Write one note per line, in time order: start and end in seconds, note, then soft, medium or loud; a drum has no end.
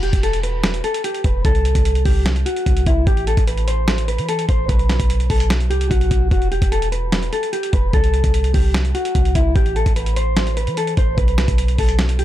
0.00 0.12 E1 loud
0.00 0.20 G4 medium
0.00 closed hi-hat medium
0.13 0.81 E1 loud
0.13 kick medium
0.13 closed hi-hat loud
0.23 0.40 A4 medium
0.23 closed hi-hat medium
0.33 closed hi-hat medium
0.43 0.82 B4 medium
0.43 closed hi-hat medium
0.63 snare loud
0.63 closed hi-hat medium
0.74 closed hi-hat medium
0.84 1.01 A4 medium
0.84 closed hi-hat medium
0.94 closed hi-hat medium
1.04 1.21 G4 medium
1.04 closed hi-hat medium
1.14 closed hi-hat medium
1.24 1.44 E1 loud
1.24 1.42 B4 medium
1.24 kick medium
1.24 closed hi-hat medium
1.45 1.74 C2 loud
1.45 2.02 A4 loud
1.45 kick loud
1.45 closed hi-hat medium
1.55 closed hi-hat soft
1.65 closed hi-hat medium
1.75 2.04 C2 loud
1.75 kick medium
1.75 closed hi-hat loud
1.85 closed hi-hat medium
1.95 closed hi-hat medium
2.05 2.44 C2 loud
2.05 2.22 G4 medium
2.05 kick medium
2.05 open hi-hat medium
2.26 snare loud
2.26 closed hi-hat medium
2.36 closed hi-hat medium
2.46 2.84 F#4 medium
2.46 closed hi-hat medium
2.56 closed hi-hat medium
2.66 2.86 C2 loud
2.66 kick loud
2.66 closed hi-hat medium
2.77 closed hi-hat medium
2.86 3.06 C2 loud
2.86 3.04 E4 medium
2.86 kick medium
2.86 closed hi-hat medium
3.07 3.36 A1 loud
3.07 3.24 G4 loud
3.07 kick loud
3.07 closed hi-hat medium
3.17 closed hi-hat soft
3.27 3.44 A4 medium
3.27 closed hi-hat medium
3.37 4.20 A1 loud
3.37 kick medium
3.37 closed hi-hat medium
3.47 3.64 B4 medium
3.47 closed hi-hat medium
3.58 closed hi-hat medium
3.68 4.06 C5 medium
3.68 closed hi-hat medium
3.88 snare loud
3.88 closed hi-hat medium
3.98 closed hi-hat medium
4.08 4.25 B4 medium
4.08 closed hi-hat medium
4.18 4.47 E3 loud
4.18 closed hi-hat medium
4.29 4.46 A4 medium
4.29 closed hi-hat medium
4.39 closed hi-hat medium
4.49 4.68 A1 loud
4.49 4.66 C5 medium
4.49 kick medium
4.49 closed hi-hat medium
4.69 4.98 B1 loud
4.69 5.26 B4 medium
4.69 kick loud
4.69 closed hi-hat medium
4.79 closed hi-hat soft
4.89 snare loud
4.89 closed hi-hat medium
5.00 5.29 B1 loud
5.00 kick medium
5.00 closed hi-hat loud
5.10 closed hi-hat medium
5.20 closed hi-hat medium
5.30 5.72 B1 loud
5.30 5.47 A4 medium
5.30 kick medium
5.30 closed hi-hat medium
5.30 open hi-hat medium
5.40 closed hi-hat medium
5.50 snare loud
5.50 closed hi-hat medium
5.61 closed hi-hat medium
5.70 5.90 C2 loud
5.70 5.87 G4 medium
5.70 closed hi-hat medium
5.81 closed hi-hat medium
5.91 6.10 B1 loud
5.91 6.29 F#4 medium
5.91 kick loud
5.91 closed hi-hat medium
6.01 closed hi-hat medium
6.11 6.30 B1 loud
6.11 kick medium
6.11 closed hi-hat medium
6.31 6.61 E1 loud
6.31 6.48 F#4 loud
6.31 kick loud
6.31 closed hi-hat medium
6.42 closed hi-hat soft
6.52 6.68 G4 medium
6.52 closed hi-hat medium
6.62 7.30 E1 loud
6.62 kick medium
6.62 closed hi-hat loud
6.72 6.89 A4 medium
6.72 closed hi-hat medium
6.82 closed hi-hat medium
6.92 7.30 B4 medium
6.92 closed hi-hat medium
7.12 snare loud
7.12 closed hi-hat medium
7.23 closed hi-hat medium
7.33 7.50 A4 medium
7.33 closed hi-hat medium
7.43 closed hi-hat medium
7.53 7.70 G4 medium
7.53 closed hi-hat medium
7.63 closed hi-hat medium
7.73 7.93 E1 loud
7.73 7.90 B4 medium
7.73 kick medium
7.73 closed hi-hat medium
7.93 8.23 C2 loud
7.93 8.51 A4 loud
7.93 kick loud
7.93 closed hi-hat medium
8.04 closed hi-hat soft
8.14 closed hi-hat medium
8.24 8.53 C2 loud
8.24 kick medium
8.24 closed hi-hat loud
8.34 closed hi-hat medium
8.44 closed hi-hat medium
8.54 8.93 C2 loud
8.54 8.71 G4 medium
8.54 kick medium
8.54 open hi-hat medium
8.74 snare loud
8.74 closed hi-hat medium
8.85 closed hi-hat medium
8.95 9.33 F#4 medium
8.95 closed hi-hat medium
9.05 closed hi-hat medium
9.15 9.35 C2 loud
9.15 kick loud
9.15 closed hi-hat medium
9.25 closed hi-hat medium
9.35 9.55 C2 loud
9.35 9.52 E4 medium
9.35 kick medium
9.35 closed hi-hat medium
9.55 9.85 A1 loud
9.55 9.72 G4 loud
9.55 kick loud
9.55 closed hi-hat medium
9.66 closed hi-hat soft
9.76 9.93 A4 medium
9.76 closed hi-hat medium
9.86 10.69 A1 loud
9.86 kick medium
9.86 closed hi-hat loud
9.96 10.13 B4 medium
9.96 closed hi-hat medium
10.06 closed hi-hat medium
10.16 10.55 C5 medium
10.16 closed hi-hat medium
10.37 snare loud
10.37 closed hi-hat medium
10.47 closed hi-hat medium
10.57 10.74 B4 medium
10.57 closed hi-hat medium
10.67 10.96 E3 loud
10.67 closed hi-hat medium
10.77 10.94 A4 medium
10.77 closed hi-hat medium
10.87 closed hi-hat medium
10.97 11.17 A1 loud
10.97 11.15 C5 medium
10.97 kick medium
10.97 closed hi-hat medium
11.18 11.47 B1 loud
11.18 11.75 B4 medium
11.18 kick loud
11.18 closed hi-hat medium
11.28 closed hi-hat soft
11.38 snare loud
11.38 closed hi-hat medium
11.48 11.77 B1 loud
11.48 kick medium
11.48 closed hi-hat loud
11.58 closed hi-hat medium
11.68 closed hi-hat medium
11.78 12.25 B1 loud
11.78 11.96 A4 medium
11.78 kick medium
11.78 closed hi-hat medium
11.78 open hi-hat medium
11.89 closed hi-hat medium
11.99 snare loud
11.99 closed hi-hat medium
12.09 closed hi-hat medium
12.19 12.25 G4 medium
12.19 closed hi-hat medium